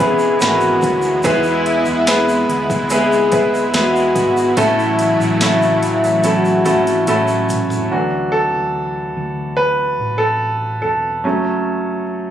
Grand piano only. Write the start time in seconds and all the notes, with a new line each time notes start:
Already playing: C#5
0.00 B3 C#4 E4 G#4 B4
0.40 B3 C#4 E4 G#4 A#4
0.48 B4
1.24 E3 G#3 B3 E4 G#4 B4
2.08 G#3 B3 E4 G#4 B4
2.90 G#3 B3 E4 G#4 B4
3.32 G#3 B3 E4 G#4 B4
3.73 G#3 B3 E4 G#4 B4
4.57 A2 A3 C#4 E4 F#4 A4
5.42 A3 C#4 E4 F#4 A4
6.24 A3 C#4 E4 F#4 A4
6.65 A3 C#4 E4 F#4 A4
7.08 A3 C#4 E4 F#4 A4
7.92 E3 F#3 D4 F#4
8.32 A4
9.57 B4
10.18 A4
10.82 A4
11.24 F#3 A3 C#4